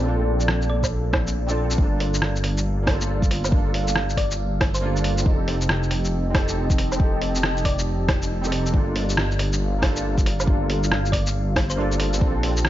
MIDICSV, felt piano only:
0, 0, Header, 1, 2, 480
1, 0, Start_track
1, 0, Key_signature, -2, "minor"
1, 0, Tempo, 434783
1, 46, Time_signature, 4, 2, 24, 8
1, 14013, End_track
2, 0, Start_track
2, 0, Title_t, "Felt piano"
2, 0, Program_c, 0, 0
2, 0, Control_c, 0, 64, 127
2, 0, Note_on_c, 0, 60, 84
2, 0, Note_on_c, 0, 62, 80
2, 0, Note_on_c, 0, 65, 75
2, 0, Note_on_c, 0, 69, 95
2, 5, Note_off_c, 0, 60, 0
2, 5, Note_on_c, 0, 60, 84
2, 31, Note_off_c, 0, 62, 0
2, 31, Note_on_c, 0, 62, 79
2, 62, Note_off_c, 0, 65, 0
2, 62, Note_on_c, 0, 65, 77
2, 92, Note_off_c, 0, 69, 0
2, 92, Note_on_c, 0, 69, 96
2, 1444, Note_off_c, 0, 60, 0
2, 1457, Note_off_c, 0, 62, 0
2, 1473, Note_off_c, 0, 65, 0
2, 1488, Note_off_c, 0, 69, 0
2, 1618, Note_on_c, 0, 60, 90
2, 1631, Note_on_c, 0, 62, 85
2, 1645, Note_on_c, 0, 65, 82
2, 1660, Note_on_c, 0, 69, 100
2, 1926, Note_on_c, 0, 58, 81
2, 1936, Note_off_c, 0, 60, 0
2, 1939, Note_off_c, 0, 62, 0
2, 1949, Note_off_c, 0, 65, 0
2, 1956, Note_on_c, 0, 62, 81
2, 1957, Note_off_c, 0, 69, 0
2, 1979, Control_c, 0, 64, 0
2, 1985, Note_on_c, 0, 65, 78
2, 2014, Note_on_c, 0, 69, 94
2, 2156, Control_c, 0, 64, 127
2, 3106, Note_off_c, 0, 58, 0
2, 3123, Note_on_c, 0, 58, 88
2, 3137, Note_off_c, 0, 62, 0
2, 3153, Note_on_c, 0, 62, 78
2, 3154, Note_off_c, 0, 65, 0
2, 3169, Note_off_c, 0, 69, 0
2, 3183, Note_on_c, 0, 65, 82
2, 3212, Note_on_c, 0, 69, 95
2, 3830, Note_off_c, 0, 58, 0
2, 3847, Note_on_c, 0, 58, 84
2, 3858, Note_off_c, 0, 62, 0
2, 3873, Note_off_c, 0, 65, 0
2, 3876, Note_on_c, 0, 62, 76
2, 3888, Note_off_c, 0, 69, 0
2, 3905, Note_on_c, 0, 65, 76
2, 3936, Note_on_c, 0, 69, 96
2, 5285, Note_off_c, 0, 58, 0
2, 5300, Note_off_c, 0, 62, 0
2, 5307, Note_on_c, 0, 58, 96
2, 5314, Note_off_c, 0, 65, 0
2, 5321, Note_on_c, 0, 62, 87
2, 5330, Note_off_c, 0, 69, 0
2, 5335, Note_on_c, 0, 65, 89
2, 5353, Note_on_c, 0, 69, 105
2, 5759, Note_on_c, 0, 60, 86
2, 5775, Note_off_c, 0, 58, 0
2, 5782, Note_off_c, 0, 62, 0
2, 5789, Note_off_c, 0, 65, 0
2, 5790, Note_on_c, 0, 63, 80
2, 5798, Note_off_c, 0, 69, 0
2, 5820, Note_on_c, 0, 67, 84
2, 5821, Control_c, 0, 64, 0
2, 5848, Note_on_c, 0, 69, 98
2, 5992, Control_c, 0, 64, 127
2, 6942, Note_off_c, 0, 60, 0
2, 6959, Note_on_c, 0, 60, 87
2, 6973, Note_off_c, 0, 63, 0
2, 6990, Note_on_c, 0, 63, 77
2, 6992, Note_off_c, 0, 67, 0
2, 7006, Note_off_c, 0, 69, 0
2, 7019, Note_on_c, 0, 67, 77
2, 7048, Note_on_c, 0, 69, 99
2, 7663, Note_off_c, 0, 60, 0
2, 7680, Note_on_c, 0, 60, 85
2, 7692, Note_off_c, 0, 63, 0
2, 7708, Note_on_c, 0, 63, 79
2, 7711, Note_off_c, 0, 67, 0
2, 7726, Note_off_c, 0, 69, 0
2, 7735, Note_on_c, 0, 67, 81
2, 7768, Note_on_c, 0, 69, 94
2, 9122, Note_off_c, 0, 60, 0
2, 9136, Note_off_c, 0, 63, 0
2, 9149, Note_off_c, 0, 67, 0
2, 9166, Note_off_c, 0, 69, 0
2, 9287, Note_on_c, 0, 60, 89
2, 9303, Note_on_c, 0, 63, 84
2, 9316, Note_on_c, 0, 67, 86
2, 9332, Note_on_c, 0, 69, 101
2, 9600, Note_on_c, 0, 58, 88
2, 9610, Note_off_c, 0, 60, 0
2, 9618, Note_off_c, 0, 63, 0
2, 9625, Note_off_c, 0, 67, 0
2, 9629, Note_on_c, 0, 62, 80
2, 9632, Note_off_c, 0, 69, 0
2, 9656, Note_on_c, 0, 65, 81
2, 9662, Control_c, 0, 64, 0
2, 9685, Note_on_c, 0, 69, 96
2, 9841, Control_c, 0, 64, 127
2, 10784, Note_off_c, 0, 58, 0
2, 10800, Note_on_c, 0, 58, 85
2, 10811, Note_off_c, 0, 62, 0
2, 10828, Note_on_c, 0, 62, 77
2, 10830, Note_off_c, 0, 65, 0
2, 10844, Note_off_c, 0, 69, 0
2, 10861, Note_on_c, 0, 65, 80
2, 10889, Note_on_c, 0, 69, 96
2, 11509, Note_off_c, 0, 58, 0
2, 11525, Note_on_c, 0, 58, 84
2, 11536, Note_off_c, 0, 62, 0
2, 11552, Note_off_c, 0, 65, 0
2, 11552, Note_on_c, 0, 62, 76
2, 11566, Note_off_c, 0, 69, 0
2, 11584, Note_on_c, 0, 65, 81
2, 11613, Note_on_c, 0, 69, 92
2, 12964, Note_off_c, 0, 58, 0
2, 12978, Note_off_c, 0, 62, 0
2, 12982, Note_on_c, 0, 58, 99
2, 12994, Note_off_c, 0, 65, 0
2, 12999, Note_on_c, 0, 62, 91
2, 13008, Note_off_c, 0, 69, 0
2, 13011, Note_on_c, 0, 65, 87
2, 13029, Note_on_c, 0, 69, 106
2, 13443, Note_on_c, 0, 60, 88
2, 13453, Note_off_c, 0, 58, 0
2, 13459, Note_off_c, 0, 62, 0
2, 13467, Note_off_c, 0, 65, 0
2, 13475, Note_on_c, 0, 62, 83
2, 13476, Note_off_c, 0, 69, 0
2, 13499, Control_c, 0, 64, 0
2, 13503, Note_on_c, 0, 65, 80
2, 13536, Note_on_c, 0, 69, 95
2, 13709, Control_c, 0, 64, 127
2, 14013, Note_off_c, 0, 60, 0
2, 14013, Note_off_c, 0, 62, 0
2, 14013, Note_off_c, 0, 65, 0
2, 14013, Note_off_c, 0, 69, 0
2, 14013, End_track
0, 0, End_of_file